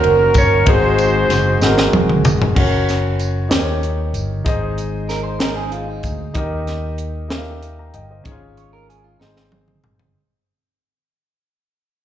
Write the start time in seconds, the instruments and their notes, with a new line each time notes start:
Already playing: grand piano D#3 A#3 C#4 D#4 F#4 A#4 C5, horn section C#4 F#4 A#4, alto saxophone A#4
0.03 fingered electric bass F#1, ride bell
0.34 fingered electric bass G1, alto saxophone C#5, kick, ride bell, tambourine
0.66 fingered electric bass G#1, grand piano G#2 G#3 C4 D#4 F#4 G#4, horn section D#4 F#4 C5, alto saxophone C5, kick, ride bell
0.98 ride bell, tambourine
1.29 fingered electric bass F#1, snare, ride bell, tambourine
1.60 fingered electric bass G#1, grand piano G#3 C4 D#4 F#4, snare, tambourine
1.65 grand piano A#4
1.78 snare
1.92 fingered electric bass E1, high tom
2.09 mid tom
2.23 fingered electric bass F1, mid tom, tambourine
2.42 floor tom
2.55 fingered electric bass F#1, grand piano C#4 F#4 A#4 C#5, kick, crash
2.89 snare, closed hi-hat, tambourine
3.20 closed hi-hat, tambourine
3.49 fingered electric bass D#2, grand piano D#3 D#4 G4 A#4 C5, snare, closed hi-hat, tambourine
3.59 grand piano C#5
3.83 closed hi-hat
4.13 fingered electric bass G1, closed hi-hat, tambourine
4.45 fingered electric bass G#1, grand piano G#2 D#4 G#4 C5 D#5, kick, closed hi-hat
4.78 closed hi-hat, tambourine
5.09 clean electric guitar A#4, snare, closed hi-hat, tambourine
5.23 clean electric guitar C5
5.39 grand piano D#4 G#4 C5 D#5, clean electric guitar A#4, snare, closed hi-hat, tambourine
5.56 clean electric guitar G#4
5.72 clean electric guitar F4, closed hi-hat
5.88 clean electric guitar D#4
6.03 fingered electric bass D2, kick, closed hi-hat, tambourine
6.34 fingered electric bass D#2, grand piano D#3 D#4 G4 A#4 D#5, kick, closed hi-hat
6.67 snare, closed hi-hat
6.98 closed hi-hat
7.28 grand piano D#4 G4 A#4 E5, snare, closed hi-hat
7.38 grand piano F5
7.63 closed hi-hat
7.79 grand piano G5 A#5
7.94 fingered electric bass G1, grand piano D#5 G5, closed hi-hat
8.11 grand piano C5 D#5
8.24 fingered electric bass G#1, grand piano G#2 C#4 D#4 G#4 C#5, kick, closed hi-hat
8.32 grand piano F4
8.57 clean electric guitar C#5, closed hi-hat
8.73 clean electric guitar A#4
8.90 clean electric guitar G#4, closed hi-hat
9.04 clean electric guitar F4
9.20 fingered electric bass G#1, grand piano G#3 C4 D#4 G#4 C5, clean electric guitar D#4, snare
9.36 clean electric guitar C4, snare
9.52 high tom
9.68 mid tom
9.84 fingered electric bass G1, mid tom
9.99 floor tom